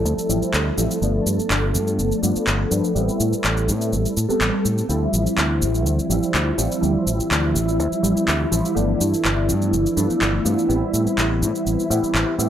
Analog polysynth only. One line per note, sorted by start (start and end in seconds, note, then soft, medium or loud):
0.00 0.27 F3 medium
0.00 0.27 G3 medium
0.00 0.27 C4 medium
0.00 0.27 E4 medium
0.29 0.75 F3 medium
0.29 0.75 G3 medium
0.29 0.75 C4 medium
0.29 0.75 E4 medium
0.77 0.99 F3 medium
0.77 0.99 G3 medium
0.77 0.99 C4 medium
0.77 0.99 E4 medium
1.01 2.20 F3 medium
1.01 2.20 A3 medium
1.01 2.21 B3 medium
1.01 2.21 D4 medium
2.22 2.68 F3 medium
2.22 2.68 A3 medium
2.22 2.68 B3 medium
2.22 2.69 D4 medium
2.71 2.92 F3 medium
2.71 2.93 A3 medium
2.71 2.93 B3 medium
2.71 2.93 D4 medium
2.95 4.13 G3 medium
2.95 4.14 B3 medium
2.95 4.14 C4 medium
2.95 4.14 E4 medium
4.29 4.86 G3 medium
4.29 4.86 B3 medium
4.29 4.87 C4 medium
4.29 4.87 A4 medium
4.89 6.07 F3 medium
4.89 6.07 G3 medium
4.89 6.08 C4 medium
4.89 6.08 E4 medium
6.10 6.55 F3 medium
6.10 6.56 G3 medium
6.10 6.56 C4 medium
6.10 6.56 E4 medium
6.58 6.79 F3 medium
6.58 6.80 G3 medium
6.58 6.80 C4 medium
6.58 6.80 E4 medium
6.81 8.00 F3 medium
6.81 8.00 G3 medium
6.81 8.01 C4 medium
6.81 8.01 E4 medium
8.02 8.49 F3 medium
8.02 8.49 G3 medium
8.02 8.49 C4 medium
8.02 8.49 E4 medium
8.51 8.73 F3 medium
8.51 8.73 G3 medium
8.51 8.73 C4 medium
8.51 8.73 E4 medium
8.75 9.94 F3 medium
8.75 9.94 A3 medium
8.75 9.94 B3 medium
8.75 9.94 D4 medium
9.97 10.42 F3 medium
9.97 10.43 A3 medium
9.97 10.43 B3 medium
9.97 10.43 D4 medium
10.45 10.67 F3 medium
10.45 10.67 A3 medium
10.45 10.67 B3 medium
10.45 10.67 D4 medium
10.69 11.87 G3 medium
10.69 11.88 B3 medium
10.69 11.88 C4 medium
10.69 11.88 E4 medium
11.90 12.36 G3 medium
11.90 12.36 B3 medium
11.90 12.36 C4 medium
11.90 12.36 E4 medium
12.39 12.49 G3 medium
12.39 12.49 B3 medium
12.39 12.49 C4 medium
12.39 12.49 E4 medium